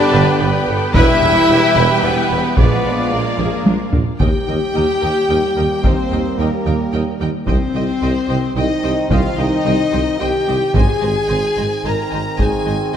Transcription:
Already playing: trombone section D3 G3, string section B3 D4 G4 B4, french horn section D4, cello section D4, violin section A4 D5, trumpet B4, flute section D5, viola section G5
0.12 tuba G1, double bass section G1, violin section G4, viola section B4
0.39 tuba G1, double bass section G1, viola section D4, violin section B4
0.67 double bass section G1, tuba G1, viola section G4, violin section A4
0.94 double bass section E1, tuba E1, trombone section E3 G3, cello section E4, french horn section E4, violin section B4 E5, trumpet B4, viola section B4 G5, flute section E5, string section E5, taiko
1.21 double bass section E1, tuba E1, viola section E4, violin section A4
1.49 double bass section E1, tuba E1, viola section G4, violin section G4
1.75 double bass section E1, tuba E1, violin section G4, viola section B4
2.03 tuba E1, double bass section E1, french horn section B3, cello section B3, viola section E4, flute section B4, violin section B4
2.29 double bass section E1, tuba E1, viola section G4
2.56 tuba A#1, double bass section A#1, trombone section F3 G#3, cello section B3, french horn section B3, string section D4 F4 G#4 F5, viola section G#4 D5, flute section B4, violin section B4 D5, trumpet D5, taiko
2.84 tuba A#1, double bass section A#1, viola section D4
3.11 double bass section A#1, tuba A#1, cello section A#3, french horn section A#3, viola section F4, flute section A#4, violin section A#4
3.38 double bass section A#1, tuba A#1, viola section G#4, taiko low-mid
3.65 tuba A#1, double bass section A#1, viola section D4, taiko high
3.93 tuba A#1, double bass section A#1, viola section F4, taiko low
4.20 tuba D#2, cello section D#2, double bass section D#2, trombone section G3 A#3, french horn section G4, viola section A#4 D#5, violin section G5, taiko
4.47 tuba D#2, cello section D#2, double bass section D#2, viola section A#4 D#5, violin section G5
4.74 tuba D#2, cello section D#2, double bass section D#2, viola section A#4 D#5, violin section G5
5.02 tuba D#2, cello section D#2, double bass section D#2, viola section A#4 D#5, violin section G5
5.29 tuba D#2, cello section D#2, double bass section D#2, viola section A#4 D#5, violin section G5
5.56 tuba D#2, cello section D#2, double bass section D#2, viola section A#4 D#5, violin section G5
5.82 cello section D#2, tuba D#2, double bass section D#2, french horn section C4, viola section A#4 D#5, violin section C5 G5, taiko
6.11 cello section D#2, double bass section D#2, tuba D#2, viola section A#4 D#5, violin section G5
6.38 tuba D#2, cello section D#2, double bass section D#2, french horn section A#3, violin section A#4 G5, viola section A#4 D#5
6.65 tuba D#2, cello section D#2, double bass section D#2, viola section A#4 D#5, violin section G5
6.93 tuba D#2, cello section D#2, double bass section D#2, viola section A#4 D#5, violin section G5
7.20 tuba D#2, cello section D#2, double bass section D#2, viola section A#4 D#5, violin section G5
7.47 tuba C2, double bass section C2, cello section C2, trombone section D#3 C4, french horn section C4, violin section C5 D#5 G5, viola section C5 D#5, taiko
7.75 double bass section C2, tuba C2, cello section C2, viola section C5 D#5, violin section D#5 G5
8.02 double bass section C2, tuba C2, cello section C2, viola section C5 D#5, violin section D#5 G5
8.28 double bass section C2, tuba C2, cello section C2, viola section C5 D#5, violin section D#5 G5
8.55 double bass section C2, cello section C2, tuba C2, french horn section D#4, viola section C5 D#5, violin section D#5 G5
8.83 double bass section C2, tuba C2, cello section C2, viola section C5 D#5, violin section D#5 G5
9.10 double bass section C2, cello section C2, tuba C2, french horn section F4, viola section C5 D#5, violin section D#5 F5 G5, taiko
9.37 cello section C2, double bass section C2, tuba C2, french horn section D#4, viola section C5 D#5, violin section D#5 G5
9.65 double bass section C2, cello section C2, tuba C2, viola section C5 D#5, violin section D#5 G5
9.93 cello section C2, double bass section C2, tuba C2, viola section C5 D#5, violin section D#5 G5
10.19 tuba C2, cello section C2, double bass section C2, french horn section G4, viola section C5 D#5, violin section D#5 G5
10.48 cello section C2, tuba C2, double bass section C2, viola section C5 D#5, violin section D#5 G5
10.74 double bass section G#1, tuba G#1, cello section G#2, trombone section D#3 C4, french horn section G#4, viola section C5, violin section D#5 G#5, taiko
11.01 double bass section G#1, tuba G#1, cello section G#2, viola section C5, violin section D#5 G#5
11.28 double bass section G#1, tuba G#1, cello section G#2, viola section C5, violin section D#5 G#5
11.57 double bass section G#1, tuba G#1, cello section G#2, viola section C5, violin section D#5 G#5
11.84 double bass section G#1, tuba G#1, cello section G#2, french horn section A#4, viola section C5, violin section D#5 G#5 A#5
12.10 double bass section G#1, tuba G#1, cello section G#2, viola section C5, violin section D#5 G#5
12.37 double bass section G#1, tuba G#1, cello section G#2, french horn section G#4, viola section C5, violin section D#5 G#5, taiko
12.65 tuba G#1, double bass section G#1, cello section G#2, viola section C5, violin section D#5 G#5
12.93 double bass section G#1, tuba G#1, cello section G#2, violin section D#5 G#5

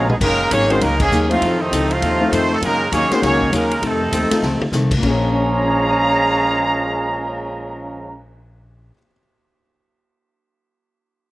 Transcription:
Already playing: upright bass A#1, saxophone section D#3 A#3 C#4 F4, hollow-body jazz guitar B3 F4 A#4
0.09 trombone section B2 F3 G#3, trumpet section B3 D#4 G#4, mid tom
0.20 upright bass F#1, trombone section C#3 D#3 A#3, hollow-body jazz guitar F#3 A#3 D#4 G#4, trumpet section G#3 C#4 D#4 A#4, kick, crash
0.51 upright bass G#1, trombone section D#3 A#3 C#4, hollow-body jazz guitar F#3 A#3 D#4 G#4, trumpet section A#3 D#4 G#4 C#5, kick, hi-hat pedal, ride
0.69 grand piano G#3 C#4 D#4 F#4 A#4, trumpet section G#3 C#4 F4 C5, trombone section C4, ride
0.81 upright bass C#2, trombone section C#3 D#3 A#3, hollow-body jazz guitar F#3 A#3 D#4 G#4, trumpet section G#3 C#4 D#4 A#4, kick, ride
0.98 trombone section C#3 D#3 G#3, trumpet section A#3 C#4 G#4, kick, crash
1.10 upright bass D#2, hollow-body jazz guitar F#3 A#3 D#4 G#4, hi-hat pedal
1.29 trombone section A2 C3 F3, grand piano A3 C4 D#4 F4 C5, trumpet section A3 C4 D#4 F4, ride
1.41 upright bass F2, hollow-body jazz guitar F3 C4 D#4 A4, kick, ride
1.60 trombone section A2 C3 D#3, trumpet section A3 C4 D#4
1.71 upright bass C#2, hollow-body jazz guitar F3 C4 D#4 A4, kick, hi-hat pedal, ride
1.90 trombone section A2 C3 F3, trumpet section A3 C4 D#4 F4, ride
2.02 upright bass D#2, hollow-body jazz guitar F3 C4 D#4 A4, kick, ride
2.21 grand piano A3 C4 D#4 F4 A4
2.32 upright bass F2, trombone section D#3 A3 C4, hollow-body jazz guitar F3 C4 D#4 A4, trumpet section A3 D#4 F4 C5, kick, hi-hat pedal, ride
2.50 trombone section C3 D#3 A3
2.54 trumpet section C4 D#4 A4
2.60 upright bass F#2, trombone section C#3 D#3 A#3, hollow-body jazz guitar F#3 A#3 D#4 G#4, kick, ride
2.65 trumpet section G#3 C#4 D#4 A#4
2.92 upright bass D#2, trombone section D#3 A#3 C#4, hollow-body jazz guitar F#3 A#3 D#4 G#4, trumpet section A#3 D#4 G#4 C#5, kick, hi-hat pedal, ride
3.11 trumpet section G#3 C#4 F4 C5, grand piano A#3 C#4 D#4 F#4 G#4, trombone section C4, muted upright bass stroke, snare, ride
3.22 upright bass C#2, trombone section D#3 A#3 C#4, hollow-body jazz guitar F#3 A#3 D#4 G#4, trumpet section A#3 D#4 G#4 C#5, kick, snare, ride
3.41 kick
3.52 upright bass D#2, trombone section C#3 D#3 A#3, hollow-body jazz guitar F#3 A#3 D#4 G#4, trumpet section G#3 C#4 D#4 A#4, kick, hi-hat pedal, ride
3.71 ride
3.81 hollow-body jazz guitar F2 D#3 A3 C4, upright bass F2, trombone section C3 D#3 A3, kick, ride
3.86 trumpet section C4 D#4 A4
4.12 upright bass D#2, hollow-body jazz guitar F2 D#3 A3 C4, kick, hi-hat pedal, ride
4.31 grand piano A3 C4 D#4 F4 A4, muted upright bass stroke, snare, ride
4.42 upright bass C#2, hollow-body jazz guitar F2 D#3 A3, snare
4.46 hollow-body jazz guitar C4
4.61 muted upright bass stroke, high tom
4.72 upright bass C2, hollow-body jazz guitar F2 D#3 A3 C4, snare, hi-hat pedal
4.91 kick, crash
4.97 grand piano A#2 A#3, trombone section F3 C#4, hollow-body jazz guitar A#3
5.02 upright bass A#1, trombone section A#2 G#3, grand piano C#4, hollow-body jazz guitar C#4, trumpet section G#4 C#5 F5 A#5, kick, crash
5.06 grand piano G#4 C#5, hollow-body jazz guitar G#4
5.21 cymbal swell
5.33 grand piano D#5
5.41 grand piano G#5
5.49 grand piano C6
5.58 grand piano D#6
5.68 grand piano G#6
5.79 grand piano C7
5.91 grand piano D#7

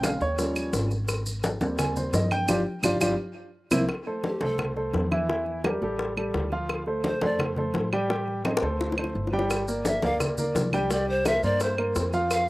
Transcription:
Already playing: upright bass A#1, upright piano C#3 G#3 C4
0.03 upright piano F5, high bongo, high conga, claves, maracas
0.20 upright bass D#2, upright piano C#5, high bongo, high conga, maracas
0.38 upright piano F3 G3 C#4, high bongo, high conga, maracas
0.56 high bongo, high conga, claves, maracas
0.73 upright bass G#1, high bongo, low bongo, high conga, maracas
0.91 high bongo, high conga, maracas
1.08 high bongo, high conga, claves, maracas
1.26 high conga, maracas
1.43 high bongo, high conga, maracas
1.61 upright bass D#2, upright piano G3 A#3 C4, high bongo, high conga, maracas
1.78 upright piano G#5, high bongo, high conga, low conga, claves, maracas
1.96 upright piano C5, high bongo, high conga, low conga, maracas
2.13 upright bass G2, upright piano D#5, high bongo, low bongo, high conga, maracas
2.31 upright piano G5, high bongo, high conga, claves, maracas
2.48 upright bass G1, upright piano D4 F4 G4, low bongo, high conga, claves, maracas
2.83 upright bass G1, upright piano D4 F4 G4, low bongo, high conga, claves, maracas
3.00 upright bass G1, upright piano D4 F4 G4, low bongo, high conga, claves, maracas
3.71 upright bass C2, upright piano A#3 C4 E4, low bongo, high conga, claves, maracas
3.89 high bongo, high conga, claves
4.07 upright piano A3 A4 C5, high conga
4.24 pan flute G4, high bongo, high conga
4.41 upright bass C2, upright piano A3 A4 C5, pan flute A4, high bongo, high conga
4.58 high bongo, high conga, low conga, claves
4.76 upright piano A3 A4 C5, high bongo, high conga
4.94 upright bass E2, high bongo, low bongo, high conga
5.11 upright piano E3 E4 E5, high bongo, high conga, claves
5.29 upright piano E3 E4 E5, high bongo, high conga
5.46 high conga
5.64 upright piano G3 G4 A#4, high bongo, high conga, claves
5.82 upright bass A1, upright piano G3 G4 A4, high bongo, high conga
5.99 high bongo, high conga
6.17 upright piano G3 G4 A4, high bongo, high conga, claves
6.34 upright bass D2, high bongo, low bongo, high conga
6.52 upright piano F3 F4 F5, high bongo, high conga
6.69 high bongo, high conga, claves
6.86 upright piano A3 A4 C5, high conga
7.04 pan flute C5, high bongo, high conga
7.21 upright bass F2, upright piano A3 A4 C5, pan flute D5, high bongo, high conga
7.39 high bongo, high conga, low conga, claves
7.56 upright piano A3 A4 C5, high bongo, high conga, low conga
7.74 upright bass A1, high bongo, low bongo, high conga
7.93 upright piano G3 G4 G5, high bongo, claves
8.10 upright piano G3 G4 G5, high bongo, high conga
8.28 high conga
8.45 upright piano C4 C5 D#5, high bongo, high conga, claves
8.57 high bongo
8.62 upright bass D2, upright piano A3 A4 C5, high conga
8.80 low bongo, high conga
8.92 low bongo
8.97 upright piano A3 A4 C5, high conga, claves
9.04 low bongo
9.15 upright bass G1, high conga
9.27 low bongo
9.33 upright piano G3 G4 G5, high conga
9.39 low bongo
9.50 high bongo, high conga, claves, maracas
9.68 upright piano A#3 A#4 D5, high conga, maracas
9.85 pan flute E5, high bongo, high conga, maracas
10.02 upright bass D2, upright piano A#3 A#4 D5, pan flute F5, high bongo, high conga, maracas
10.20 high bongo, high conga, low conga, claves, maracas
10.38 upright piano A#3 A#4 D5, high bongo, high conga, low conga, maracas
10.55 upright bass C2, high bongo, low bongo, high conga, maracas
10.73 upright piano G3 G4 G5, high bongo, high conga, claves, maracas
10.91 upright piano G3 G4 G5, pan flute D5, high bongo, high conga, maracas
11.08 pan flute C5, high conga
11.25 upright piano A#3 A#4 C5, pan flute E5, high bongo, high conga, claves, maracas
11.43 upright bass G2, upright piano A#3 A#4 C5, pan flute D5, high bongo, high conga, maracas
11.60 pan flute C5, high bongo, high conga, maracas
11.78 upright piano A#3 A#4 C5, high bongo, high conga, claves
11.95 upright bass F2, high bongo, low bongo, high conga, maracas
12.13 upright piano F3 F4 F5, high bongo, high conga, maracas
12.31 pan flute F5, high bongo, high conga, claves, maracas

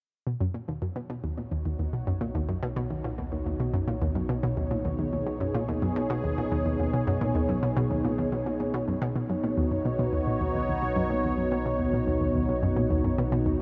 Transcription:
0.27 synth drone B1, synth arpeggio sound B2, analog synth pad B3 D#4 F#4 C#5
0.41 synth arpeggio sound F#2
0.54 synth arpeggio sound A#2
0.68 synth arpeggio sound D#2
0.82 synth arpeggio sound F#2
0.96 synth arpeggio sound B2
1.10 synth arpeggio sound B2
1.24 synth arpeggio sound D#2
1.38 synth arpeggio sound A#2
1.52 synth arpeggio sound D#2
1.65 synth arpeggio sound D#2
1.79 synth arpeggio sound D#2
1.93 synth arpeggio sound B2
2.07 synth arpeggio sound F#2
2.21 synth arpeggio sound A#2
2.35 synth arpeggio sound D#2
2.49 synth arpeggio sound F#2
2.63 synth arpeggio sound B2
2.76 synth arpeggio sound B2
2.90 synth arpeggio sound D#2
3.04 synth arpeggio sound A#2
3.18 synth arpeggio sound D#2
3.32 synth arpeggio sound D#2
3.46 synth arpeggio sound D#2
3.60 synth arpeggio sound B2
3.74 synth arpeggio sound F#2
3.88 synth arpeggio sound A#2
4.02 synth arpeggio sound D#2
4.15 synth arpeggio sound F#2
4.29 synth arpeggio sound B2
4.43 synth arpeggio sound B2
4.57 synth arpeggio sound D#2
4.71 synth arpeggio sound A#2, analog synth pad G#4
4.85 synth arpeggio sound D#2
4.99 synth arpeggio sound D#2
5.13 synth arpeggio sound D#2
5.26 synth arpeggio sound B2
5.40 synth arpeggio sound F#2
5.54 synth arpeggio sound A#2
5.68 synth arpeggio sound D#2
5.82 synth arpeggio sound F#2
5.96 synth arpeggio sound B2
6.10 synth arpeggio sound B2
6.24 synth arpeggio sound D#2
6.38 synth arpeggio sound A#2
6.52 synth arpeggio sound D#2
6.66 synth arpeggio sound D#2
6.80 synth arpeggio sound D#2
6.93 synth arpeggio sound B2
7.07 synth arpeggio sound F#2
7.21 synth arpeggio sound A#2
7.35 synth arpeggio sound D#2
7.49 synth arpeggio sound F#2
7.63 synth arpeggio sound B2
7.77 synth arpeggio sound B2
7.91 synth arpeggio sound D#2
8.05 synth arpeggio sound A#2
8.18 synth arpeggio sound D#2
8.32 synth arpeggio sound B2
8.46 synth arpeggio sound B2
8.60 synth arpeggio sound A#2
8.74 synth arpeggio sound B2
8.88 synth arpeggio sound F#2
9.02 synth arpeggio sound B2
9.16 synth drone B1, synth arpeggio sound B2, analog synth pad B3 D#4 F#4 C#5
9.30 synth arpeggio sound F#2
9.44 synth arpeggio sound A#2
9.57 synth arpeggio sound D#2
9.71 synth arpeggio sound F#2
9.85 synth arpeggio sound B2
9.99 synth arpeggio sound B2
10.13 synth arpeggio sound D#2
10.27 synth arpeggio sound A#2
10.41 synth arpeggio sound D#2
10.55 synth arpeggio sound D#2
10.69 synth arpeggio sound D#2
10.82 synth arpeggio sound B2
10.96 synth arpeggio sound F#2
11.10 synth arpeggio sound A#2
11.24 synth arpeggio sound D#2
11.38 synth arpeggio sound F#2
11.52 synth arpeggio sound B2
11.66 synth arpeggio sound B2
11.79 synth arpeggio sound D#2
11.93 synth arpeggio sound A#2
12.07 synth arpeggio sound D#2
12.21 synth arpeggio sound D#2
12.35 synth arpeggio sound D#2
12.49 synth arpeggio sound B2
12.63 synth arpeggio sound F#2
12.77 synth arpeggio sound A#2
12.90 synth arpeggio sound D#2
13.04 synth arpeggio sound F#2
13.18 synth arpeggio sound B2
13.32 synth arpeggio sound B2
13.46 synth arpeggio sound D#2

